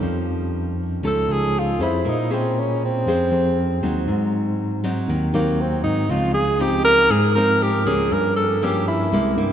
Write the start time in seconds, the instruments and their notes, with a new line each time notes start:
Already playing: nylon-string guitar C#4 D#4 A4
0.02 tine electric piano F2, nylon-string guitar F3
1.02 tine electric piano C#2, nylon-string guitar F3 C#4 D#4 A4
1.07 tenor saxophone A4
1.28 tine electric piano C#2, tenor saxophone G#4
1.59 tenor saxophone F4
1.79 tine electric piano F2, nylon-string guitar C#4 G#4 C5, tenor saxophone E4
2.05 tine electric piano A#2, nylon-string guitar A#3
2.09 tenor saxophone D#4
2.30 tenor saxophone C4, nylon-string guitar C#4 G#4 C5
2.60 tenor saxophone C#4
2.84 tenor saxophone C4
3.06 tine electric piano F2, nylon-string guitar F3 G#4 C5
3.31 tine electric piano F2
3.82 tine electric piano D#2, nylon-string guitar F#3 C4 D#4
4.07 tine electric piano G#2, nylon-string guitar G#2
4.84 nylon-string guitar F#3 C4 D#4
5.09 tine electric piano D#2, nylon-string guitar D#3
5.33 tine electric piano D#2, nylon-string guitar F#3 C4 D#4, tenor saxophone A#3
5.61 tenor saxophone C4
5.84 tine electric piano G#2, tenor saxophone D#4
6.09 tine electric piano C#2, nylon-string guitar C#3 F3 C4 D#4, tenor saxophone F4
6.34 tenor saxophone G#4
6.59 nylon-string guitar F3 C4 D#4, tenor saxophone G4
6.85 tenor saxophone A#4
7.10 tine electric piano G#2, nylon-string guitar G#2, tenor saxophone G#4
7.35 tine electric piano G#2, nylon-string guitar F3 C4 D#4, tenor saxophone A#4
7.62 tenor saxophone G4
7.85 tine electric piano C#2, nylon-string guitar F3 A#3 C#4, tenor saxophone G#4
8.11 tine electric piano G2, nylon-string guitar G2, tenor saxophone A#4
8.36 tenor saxophone A4
8.62 nylon-string guitar F3 A#3 C#4, tenor saxophone G4
8.88 tenor saxophone E4
9.12 tine electric piano C2, nylon-string guitar C3 G#3 A#3 E4
9.37 tine electric piano G2, nylon-string guitar A#3 E4